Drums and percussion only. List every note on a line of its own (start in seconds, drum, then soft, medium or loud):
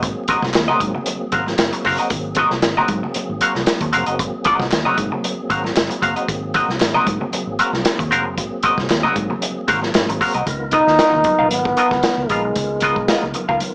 0.03 kick loud
0.03 closed hi-hat medium
0.28 kick loud
0.28 closed hi-hat medium
0.28 muted conga soft
0.43 kick medium
0.43 snare soft
0.54 snare loud
0.54 clap loud
0.54 closed hi-hat medium
0.54 muted conga soft
0.69 high conga medium
0.69 low conga medium
0.80 kick loud
0.80 closed hi-hat medium
0.80 high conga medium
0.96 low conga medium
1.06 closed hi-hat medium
1.06 muted conga soft
1.06 high conga medium
1.32 kick loud
1.32 closed hi-hat medium
1.47 snare soft
1.47 high conga medium
1.58 snare loud
1.58 clap medium
1.58 closed hi-hat loud
1.58 muted conga soft
1.73 closed hi-hat medium
1.84 kick medium
1.84 open hi-hat medium
1.84 muted conga soft
1.98 closed hi-hat soft
2.10 kick loud
2.10 closed hi-hat medium
2.10 muted conga soft
2.35 kick loud
2.35 closed hi-hat medium
2.50 snare soft
2.62 snare loud
2.62 clap medium
2.62 closed hi-hat medium
2.62 muted conga soft
2.77 high conga medium
2.77 low conga medium
2.88 kick medium
2.88 closed hi-hat medium
2.88 muted conga soft
2.88 high conga medium
3.04 low conga medium
3.14 closed hi-hat medium
3.14 high conga medium
3.41 closed hi-hat medium
3.41 muted conga soft
3.55 snare soft
3.55 high conga medium
3.66 snare loud
3.66 clap medium
3.66 closed hi-hat medium
3.81 kick medium
3.81 closed hi-hat medium
3.93 closed hi-hat medium
4.06 closed hi-hat medium
4.19 kick loud
4.19 closed hi-hat loud
4.19 muted conga soft
4.44 kick loud
4.44 closed hi-hat medium
4.44 muted conga soft
4.60 kick medium
4.60 snare soft
4.71 snare loud
4.71 clap medium
4.71 closed hi-hat medium
4.71 muted conga soft
4.86 high conga medium
4.86 low conga medium
4.97 kick medium
4.97 closed hi-hat medium
4.97 muted conga soft
4.97 high conga medium
5.12 low conga medium
5.24 closed hi-hat medium
5.24 high conga medium
5.50 kick loud
5.50 closed hi-hat medium
5.50 muted conga soft
5.64 snare soft
5.64 high conga medium
5.76 snare loud
5.76 clap medium
5.76 closed hi-hat loud
5.91 closed hi-hat medium
6.01 kick medium
6.01 closed hi-hat medium
6.01 muted conga soft
6.16 closed hi-hat soft
6.28 kick loud
6.28 closed hi-hat loud
6.54 kick loud
6.54 closed hi-hat medium
6.54 muted conga soft
6.69 snare soft
6.80 snare loud
6.80 clap medium
6.80 closed hi-hat loud
6.94 high conga medium
6.94 low conga medium
7.07 kick medium
7.07 closed hi-hat medium
7.07 muted conga soft
7.07 high conga medium
7.21 low conga medium
7.33 closed hi-hat medium
7.33 high conga medium
7.59 closed hi-hat medium
7.59 muted conga soft
7.73 snare soft
7.73 high conga medium
7.85 snare loud
7.85 clap medium
7.85 closed hi-hat loud
7.99 kick loud
7.99 closed hi-hat medium
8.10 closed hi-hat medium
8.10 muted conga soft
8.38 kick loud
8.38 closed hi-hat medium
8.63 kick medium
8.63 closed hi-hat medium
8.78 kick medium
8.78 snare soft
8.90 snare loud
8.90 clap loud
8.90 closed hi-hat medium
9.04 high conga medium
9.04 low conga medium
9.16 kick medium
9.16 closed hi-hat medium
9.16 high conga medium
9.30 low conga medium
9.42 closed hi-hat medium
9.42 muted conga soft
9.42 high conga medium
9.68 kick loud
9.68 closed hi-hat medium
9.68 muted conga soft
9.82 snare soft
9.82 high conga medium
9.94 snare loud
9.94 clap medium
9.94 closed hi-hat medium
9.94 muted conga soft
10.09 closed hi-hat medium
10.19 kick medium
10.19 open hi-hat medium
10.19 muted conga soft
10.34 closed hi-hat soft
10.46 kick loud
10.46 closed hi-hat medium
10.46 muted conga soft
10.46 low conga medium
10.71 kick loud
10.71 closed hi-hat medium
10.87 snare soft
10.98 snare loud
10.98 closed hi-hat loud
10.98 muted conga soft
11.12 high conga medium
11.12 low conga medium
11.24 kick medium
11.24 closed hi-hat medium
11.24 muted conga soft
11.24 high conga medium
11.39 low conga medium
11.51 closed hi-hat medium
11.51 muted conga soft
11.51 high conga medium
11.65 kick loud
11.77 closed hi-hat medium
11.77 muted conga soft
11.90 kick loud
11.90 snare soft
11.90 high conga medium
12.03 snare loud
12.03 closed hi-hat medium
12.03 muted conga soft
12.29 kick medium
12.29 closed hi-hat medium
12.55 kick loud
12.55 closed hi-hat loud
12.55 low conga medium
12.80 kick loud
12.80 closed hi-hat medium
12.96 kick medium
13.08 snare loud
13.08 closed hi-hat medium
13.23 high conga medium
13.23 low conga medium
13.34 closed hi-hat medium
13.34 high conga medium
13.49 kick medium
13.49 low conga medium
13.60 closed hi-hat medium
13.60 high conga medium